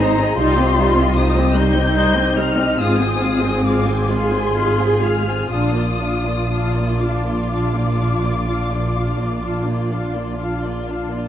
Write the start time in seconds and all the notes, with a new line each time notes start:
Already playing: G#1 D#4 A#5
0.00 G#3 D#4 C5
0.18 C4 G#4 D#5
0.36 C2 G3 D#4 F4 C5 C6
0.40 D#4
0.58 C4 G4 D#5
0.78 G3 D#4 C5
0.96 C4 G4 D#5
1.16 G3 D#4 C5 D#6
1.36 C4 G4 D#5
1.54 G3 D#4 C5 G6
1.58 D#4
1.74 C4 G4 D#5
1.94 G3 D#4 C5
2.15 C4 G4 D#5
2.36 G3 D#4 C5 F6
2.56 C4 G4 D#5
2.77 G#1 G#3 C4 F4 G#4 F5 D#6
2.99 C4 F4 G#4 G#5
3.21 G#3 F4 G#4 F5
3.42 C4 F4 G#4 G#5
3.63 G#3 F4 G#4 F5 D6
3.87 C4 F4 G#4 G#5
4.04 D6
4.08 G#3 F4 G#4 F5 C6
4.31 C4 F4 G#4 G#5
4.54 G#3 F4 G#4 F5
4.78 C4 F4 G#4 G#5
5.01 G#3 F4 G#4 F5 F6
5.25 C4 F4 G#4 G#5
5.50 A#1 D4 F4 F5 D#6
5.74 A#3 D4 F4 D5
5.99 D4 F4 F5
6.25 A#3 D4 F4 D5
6.49 D4 F4 F5
6.75 A#3 D4 F4 D5
6.99 D4 F4 F5 D6
7.25 A#3 D4 F4 D5
7.50 D4 F4 F5
7.74 A#3 D4 F4 D5
7.99 D4 F4 F5
8.23 A#3 D4 F4 D5
8.47 D4 F4 F5
8.71 A#3 D4 F4 D5
8.96 D4 F4 F5
9.18 A#3 D4 F4 D5
9.42 D4 F4 F5
9.66 A#3 D4 F4 D5
9.90 D4 F4 F5
10.15 A#3 D4 F4 D5
10.37 D4 F4 F5
10.62 A#3 D4 F4 D5
10.87 D4 F4 F5
11.12 A#3 D4 F4 D5